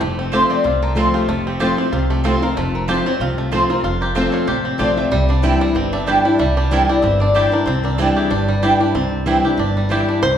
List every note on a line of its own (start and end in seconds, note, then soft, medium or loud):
0.01 0.42 F1 medium
0.01 0.62 F2 loud
0.01 0.82 A3 medium
0.19 0.50 C4 medium
0.32 0.63 F3 medium
0.32 0.64 A3 loud
0.32 0.42 C4 medium
0.32 0.64 C4 loud
0.32 0.42 F4 medium
0.32 0.64 F4 loud
0.32 0.79 G4 medium
0.32 0.43 C5 medium
0.32 0.43 A5 loud
0.50 0.97 C4 medium
0.50 0.64 D5 loud
0.64 1.06 C2 medium
0.64 1.25 C3 medium
0.64 1.14 F4 medium
0.64 0.81 C5 medium
0.82 1.28 A3 medium
0.82 0.96 A#4 loud
0.95 1.26 F3 medium
0.95 1.27 A3 medium
0.95 1.06 C4 medium
0.95 1.27 C4 medium
0.95 1.47 C4 medium
0.95 1.06 F4 loud
0.95 1.27 F4 medium
0.95 1.14 A4 medium
0.95 1.07 C5 medium
0.95 1.07 A5 medium
1.14 1.63 F4 medium
1.14 1.28 G4 medium
1.28 1.70 F1 medium
1.28 1.90 F2 medium
1.28 2.10 A3 medium
1.28 1.46 A4 medium
1.47 1.78 C4 medium
1.47 1.61 G4 medium
1.60 1.77 F3 medium
1.60 1.77 A3 medium
1.60 1.70 C4 medium
1.60 1.78 C4 loud
1.60 1.70 F4 medium
1.60 1.78 F4 medium
1.60 1.76 F4 loud
1.60 2.06 G4 medium
1.60 1.70 C5 loud
1.60 1.71 A5 loud
1.77 2.25 C4 medium
1.77 1.92 C4 medium
1.77 1.92 E4 medium
1.77 1.91 F4 medium
1.92 2.34 C2 medium
1.92 2.54 C3 medium
1.92 2.09 F4 medium
1.92 2.42 F4 medium
2.10 2.57 A3 medium
2.10 2.24 G4 loud
2.24 2.41 F3 medium
2.24 2.42 A3 medium
2.24 2.34 C4 medium
2.24 3.06 C4 medium
2.24 2.42 C4 medium
2.24 2.34 F4 medium
2.24 2.40 F4 medium
2.24 2.41 A4 medium
2.24 2.34 C5 medium
2.24 2.35 A5 loud
2.42 2.57 C4 medium
2.42 2.56 F4 medium
2.42 2.92 F4 medium
2.42 2.56 A#4 loud
2.57 2.98 F1 loud
2.57 3.18 F2 medium
2.57 3.38 A3 medium
2.57 2.74 A4 medium
2.75 2.89 A#4 loud
2.88 3.05 F3 medium
2.88 3.05 A3 loud
2.88 2.98 C4 medium
2.88 3.06 C4 medium
2.88 2.98 F4 medium
2.88 3.05 F4 loud
2.88 3.35 G4 medium
2.88 2.98 C5 loud
2.88 3.06 C5 medium
2.88 2.98 A5 loud
3.06 3.52 C4 medium
3.06 3.21 C4 medium
3.06 3.20 F4 medium
3.06 3.21 C#5 loud
3.20 3.62 C2 medium
3.20 3.82 C3 medium
3.20 3.67 F4 medium
3.20 3.31 C5 loud
3.38 3.81 A3 medium
3.51 3.69 F3 medium
3.51 3.69 A3 medium
3.51 3.62 C4 medium
3.51 4.15 C4 medium
3.51 3.70 C4 medium
3.51 3.62 F4 medium
3.51 3.69 F4 loud
3.51 3.62 C5 loud
3.51 3.62 A5 medium
3.70 3.85 C4 soft
3.70 3.84 F4 medium
3.70 3.83 F4 medium
3.70 3.83 A#4 medium
3.83 4.25 F1 medium
3.83 4.45 F2 medium
3.83 4.30 F4 medium
3.83 4.00 A4 medium
4.01 4.45 G4 medium
4.01 4.15 A#4 medium
4.15 4.46 F3 medium
4.15 4.47 A3 medium
4.15 4.25 C4 medium
4.15 4.65 C4 medium
4.15 4.47 C4 loud
4.15 4.26 F4 loud
4.15 4.47 F4 medium
4.15 4.32 C5 medium
4.15 4.26 C5 loud
4.15 4.26 A5 loud
4.32 4.77 F4 medium
4.32 4.47 C#5 medium
4.47 4.75 A1 medium
4.47 5.09 C3 medium
4.47 4.78 G4 medium
4.47 4.65 C5 medium
4.65 5.33 C4 medium
4.65 4.78 C#5 loud
4.78 5.07 A#1 medium
4.78 4.96 F3 medium
4.78 4.96 A3 medium
4.78 4.89 C4 medium
4.78 4.97 C4 medium
4.78 4.89 F4 medium
4.78 4.95 F4 medium
4.78 5.11 G4 medium
4.78 4.90 C5 medium
4.78 4.96 D5 medium
4.78 4.90 A5 medium
4.97 5.11 A3 medium
4.97 5.12 C4 medium
4.97 5.11 F4 medium
4.97 5.11 E5 medium
5.11 5.53 C2 loud
5.11 5.72 C3 medium
5.11 5.61 G3 medium
5.11 5.28 E5 medium
5.29 5.79 D4 medium
5.29 5.43 F5 medium
5.42 5.73 E3 medium
5.42 5.74 G3 loud
5.42 5.53 C4 medium
5.42 5.75 C4 medium
5.42 5.74 D4 loud
5.42 5.53 E4 loud
5.42 5.74 E4 loud
5.42 5.54 D5 loud
5.42 5.61 G5 medium
5.42 5.54 G5 loud
5.61 6.39 G3 medium
5.61 5.75 G#5 medium
5.75 6.17 G1 medium
5.75 6.36 G2 medium
5.75 6.28 C4 medium
5.75 5.93 G5 medium
5.93 6.25 D4 medium
5.93 6.07 E5 loud
6.07 6.24 E3 medium
6.07 6.24 G3 medium
6.07 6.17 C4 medium
6.07 6.25 D4 medium
6.07 6.17 E4 medium
6.07 6.24 E4 medium
6.07 7.35 G4 medium
6.07 6.25 C5 medium
6.07 6.18 D5 medium
6.07 6.18 G5 medium
6.25 6.57 D4 medium
6.25 6.40 D4 medium
6.25 6.39 E4 medium
6.25 6.39 D5 medium
6.39 6.81 C2 medium
6.39 7.00 C3 medium
6.39 6.89 G3 medium
6.39 6.56 E5 loud
6.57 7.07 D4 medium
6.57 6.71 C5 medium
6.71 6.88 E3 medium
6.71 6.88 G3 loud
6.71 6.81 C4 medium
6.71 7.03 C4 medium
6.71 6.88 D4 loud
6.71 6.81 E4 loud
6.71 6.86 E4 loud
6.71 6.89 A#4 medium
6.71 6.82 D5 loud
6.71 6.82 G5 loud
6.87 8.29 G3 medium
6.87 7.03 D4 soft
6.87 7.02 E4 medium
6.87 7.03 D5 medium
7.02 7.45 G1 medium
7.02 7.64 G2 medium
7.02 7.56 C4 medium
7.02 7.20 E5 loud
7.20 7.53 D4 medium
7.20 7.34 D5 medium
7.34 7.51 E3 medium
7.34 7.52 G3 medium
7.34 7.45 C4 medium
7.34 7.52 D4 loud
7.34 7.45 E4 medium
7.34 7.51 E4 medium
7.34 8.16 G4 medium
7.34 7.51 C5 medium
7.34 7.45 D5 medium
7.34 7.45 G5 medium
7.52 7.84 D4 medium
7.52 7.67 D4 soft
7.52 7.66 E4 medium
7.52 7.66 A#4 medium
7.66 8.08 C2 medium
7.66 8.28 C3 medium
7.66 7.98 C4 medium
7.66 7.83 C5 loud
7.83 8.28 D4 medium
7.83 7.98 A#4 medium
7.98 8.29 E3 medium
7.98 8.30 G3 medium
7.98 8.08 C4 medium
7.98 8.84 C4 medium
7.98 8.30 D4 loud
7.98 8.08 E4 loud
7.98 8.31 E4 loud
7.98 8.16 A4 medium
7.98 8.09 D5 medium
7.98 8.09 G5 loud
8.16 8.62 G4 medium
8.16 8.30 G#4 medium
8.30 8.72 G1 medium
8.30 8.92 G2 loud
8.30 8.77 D4 medium
8.30 8.95 G4 medium
8.48 9.76 G3 medium
8.62 8.79 E3 medium
8.62 8.80 G3 medium
8.62 8.72 C4 medium
8.62 8.80 D4 medium
8.62 8.73 E4 medium
8.62 8.78 E4 medium
8.62 9.09 G4 medium
8.62 8.73 D5 medium
8.62 8.73 G5 loud
8.79 9.24 D4 medium
8.79 8.95 D4 medium
8.79 8.94 E4 medium
8.95 9.36 C2 medium
8.95 9.56 C3 medium
8.95 9.26 C4 medium
9.26 9.43 E3 loud
9.26 9.43 G3 medium
9.26 9.36 C4 medium
9.26 9.73 C4 medium
9.26 9.44 D4 loud
9.26 9.36 E4 loud
9.26 9.42 E4 loud
9.26 9.37 D5 medium
9.26 9.37 G5 loud
9.43 9.58 D4 medium
9.43 9.57 E4 medium
9.43 9.88 G4 medium
9.57 10.00 G1 medium
9.57 10.19 G2 medium
9.57 10.05 D4 medium
9.77 10.20 G3 medium
9.89 10.20 E3 medium
9.89 10.21 G3 medium
9.89 10.00 C4 medium
9.89 10.21 D4 medium
9.89 10.00 E4 medium
9.89 10.21 E4 medium
9.89 10.23 G4 medium
9.89 10.01 D5 medium
9.89 10.01 G5 medium
10.09 10.22 D4 medium
10.22 10.38 C2 medium
10.22 10.38 C3 medium
10.22 10.38 C5 loud